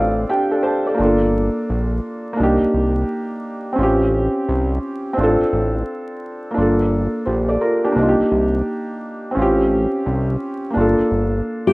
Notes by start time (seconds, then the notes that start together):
Already playing: A1 C4 D4 F4 A4 D5 F5
0.29 D4 G4 G5
0.51 D4 A4
0.63 G4 C5 A5
0.87 A4 D5
0.94 A#3 D4
0.99 G1 F4
1.04 A4
1.70 A#1
2.33 A#3 D4
2.40 C2 D#4 G4
2.62 C2
2.74 C2
3.73 C4 C#4
3.78 A1 F4
3.83 G4
4.49 C2
5.13 C4 D4
5.18 A1 F4
5.23 A4
5.40 A1
5.53 A1
6.51 A#3 D4
6.58 G1 F4 A4
7.26 A#1 G4 C5
7.49 A4 D5
7.61 F4 A#4
7.84 D4 G4
7.92 A#3 D4
7.96 C2 D#4
8.02 F4
8.08 G4
8.19 C2
8.32 C2
9.31 C4 C#4
9.36 A1 F4
9.42 G4
10.06 C2
10.70 A#3 D4
10.76 G1 F4
10.81 A4
10.99 G1
11.11 G1
11.67 G4